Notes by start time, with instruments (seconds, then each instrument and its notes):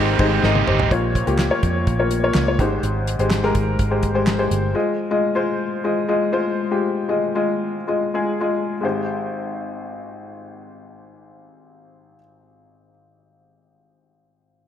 Already playing: fingered electric bass G#1, upright piano G#2 G#3 D#4 G4 A#4 C5, overdriven electric guitar G#3 C4 D#4
0.00 overdriven electric guitar G4
0.19 fingered electric bass G#1, upright piano G#3 D#4 G4 C5, kick, ride
0.43 fingered electric bass G#1, overdriven electric guitar G#3 C4 D#4 G4, upright piano A#4 D#5, snare
0.55 high tom
0.67 fingered electric bass G#1, overdriven electric guitar C4 D#4 G4, upright piano G4 C5, mid tom
0.80 floor tom
0.91 fingered electric bass A#1, upright piano A#2 A#3 F4 C#5, kick, closed hi-hat
1.15 kick, closed hi-hat
1.27 fingered electric bass C#2, upright piano A#3 F4 G4, closed hi-hat
1.38 snare, clap, closed hi-hat
1.50 upright piano A#3 F4 C#5
1.63 fingered electric bass F2, kick, closed hi-hat
1.87 fingered electric bass A#1, kick, closed hi-hat
1.99 upright piano A#3 F4 C#5
2.11 closed hi-hat
2.23 upright piano A#3 F4 C#5
2.34 fingered electric bass C#2, snare, clap, closed hi-hat
2.48 upright piano A#3 F4 C#5
2.59 fingered electric bass G#1, upright piano G#2 G#3 G4 C5, kick, closed hi-hat
2.83 fingered electric bass G#1, closed hi-hat
3.07 closed hi-hat
3.19 fingered electric bass G#1, upright piano G#3 G4 C5, closed hi-hat
3.30 snare, clap, closed hi-hat
3.43 upright piano G#3 G4 A#4, snare
3.55 fingered electric bass G#1, kick, closed hi-hat
3.79 fingered electric bass G#1, kick, closed hi-hat
3.90 upright piano G#3 G4 C5
4.03 kick, closed hi-hat
4.14 upright piano G#3 G4 C5
4.27 snare, clap, closed hi-hat
4.38 upright piano G#3 G4 C5
4.51 fingered electric bass G1, closed hi-hat
4.74 upright piano G#3 F4 D#5
5.11 upright piano G#3 F4 D#5
5.35 upright piano G#3 F4 C5
5.84 upright piano G#3 F4 D#5
6.08 upright piano G#3 F4 D#5
6.32 upright piano G#3 F4 C5
6.71 upright piano G#3 F4 G4
7.08 upright piano G#3 F4 D#5
7.35 upright piano G#3 F4 D#5
7.88 upright piano G#3 F4 D#5
8.14 upright piano G#3 F4 G#4
8.40 upright piano G#3 F4 D#5
8.81 upright piano G#1 G#3 G4
8.85 upright piano C5